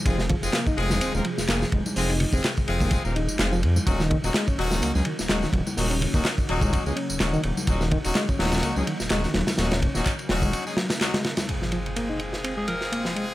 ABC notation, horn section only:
X:1
M:4/4
L:1/16
Q:"Swing 16ths" 1/4=126
K:Fphr
V:1 name="Horn section"
[A,CFA] z2 [A,CFA] z2 [A,CFA]3 [B,CFB] z2 [A,CFA] z3 | [A,CFA] z2 [A,CFA] z2 [A,CFA]3 [B,CFB] z2 [A,CFA] z3 | [G,DEG] z2 [G,DEG] z2 [G,DEG]3 [A,DEA] z2 [G,DEG] z3 | [G,DEG] z2 [G,DEG] z2 [G,DEG]3 [A,DEA] z2 [G,DEG] z3 |
[G,DEG] z2 [G,DEG] z2 [G,DEG]3 [A,DEA] z2 [G,DEG] z3 | [G,DEG] z2 [G,DEG] z2 [G,DEG]3 [A,DEA] z2 [G,DEG] z3 | [A,CFA]16 |]